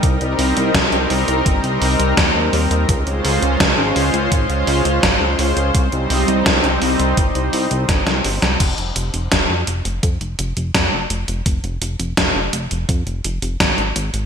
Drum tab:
CC |----------------|----------------|----------------|x---------------|
HH |xxoxxxoxxxoxx-ox|xxoxx-oxxxoxx-ox|xxoxxxoxxxoxxxox|xxxxx-xxxxxxx-xx|
SD |----o-------o---|----o-------o---|----o-------oo-o|----o-------o---|
BD |o---o---o---o---|o---o---o---o---|o---o---o---o---|o---o---o---o---|

CC |----------------|
HH |xxxxx-xxxxxxxxxx|
SD |----o-------o---|
BD |o---o---o---o---|